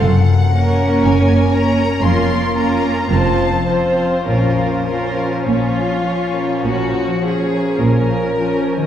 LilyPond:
<<
  \new Staff \with { instrumentName = "Violin section" } { \time 4/4 \key bes \minor \tempo 4 = 52 ges''4 aes''8 bes''8 c'''8 bes''8 a''8 c''8 | c''4 des''2 r4 | }
  \new Staff \with { instrumentName = "Violin section" } { \time 4/4 \key bes \minor r8 <des' bes'>4 <des' bes'>8 <f' bes'>8 <f' bes'>8 <f' c''>8 <f' c''>8 | <f' bes'>8 <f' bes'>8 f'4 ges'8 aes'8 bes'4 | }
  \new Staff \with { instrumentName = "Harp" } { \time 4/4 \key bes \minor ges,16 bes16 des'16 bes'16 des'16 des''16 bes'16 des'16 f,16 bes16 des'16 bes'16 f,16 f16 f'16 c''16 | bes,16 f16 f'16 bes'16 f'16 f''16 f'16 bes'16 bes16 f16 f'16 bes'16 f'16 f''16 f'16 bes'16 | }
  \new Staff \with { instrumentName = "Viola section" } { \time 4/4 \key bes \minor r8 <bes des'>4 <bes des'>8 <bes des'>8 <bes des'>8 <f c'>8 <f c'>8 | <f des'>8 <f des'>4 <f des'>4 <f des'>4 <f des'>8 | }
  \new Staff \with { instrumentName = "Cello section" } { \clef bass \time 4/4 \key bes \minor ges,4 ges,4 f,4 f,4 | bes,4 bes,4 bes,4 bes,4 | }
  \new Staff \with { instrumentName = "Double bass section" } { \clef bass \time 4/4 \key bes \minor ges,,4 ges,,4 f,,4 f,,4 | bes,,4 bes,,4 bes,,4 bes,,4 | }
>>